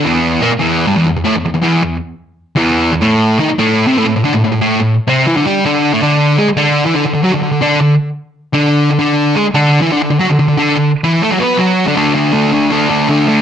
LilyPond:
\new Staff \with { instrumentName = "Distorted electric guitar" } { \clef bass \time 4/4 \key d \lydian \tempo 4 = 161 <e, e>4 <bes, bes>16 r16 <e, e>8. <g, g>16 <e, e>16 e,16 e,16 <a, a>16 e,16 e,16 | e,16 <e, e>8 e,8 r4. <e, e>4 e,16 | <a, a>4 <dis dis'>16 r16 <a, a>8. <c c'>16 <a, a>16 a,16 a,16 <d d'>16 a,16 a,16 | a,16 <a, a>8 a,8 r16 <c c'>8 <e e'>16 <d d'>16 <g g'>8 <d d'>8. <a, a>16 |
<d d'>4 <gis gis'>16 r16 <d d'>8. <e e'>16 <d d'>16 d16 d16 <fis fis'>16 d16 d16 | d16 <d d'>8 d8 r4. <d d'>4 d16 | <d d'>4 <gis gis'>16 r16 <d d'>8. <e e'>16 <d d'>16 d16 d16 <fis fis'>16 d16 d16 | d16 <d d'>8 d8 r16 <e e'>8 <a a'>16 <fis fis'>16 <b b'>8 <fis fis'>8. <d d'>16 |
<d a d'>8 <d a d'>8 <d a d'>8 <d a d'>8 <d a d'>8 <d a d'>8 <d a d'>8 <d a d'>8 | }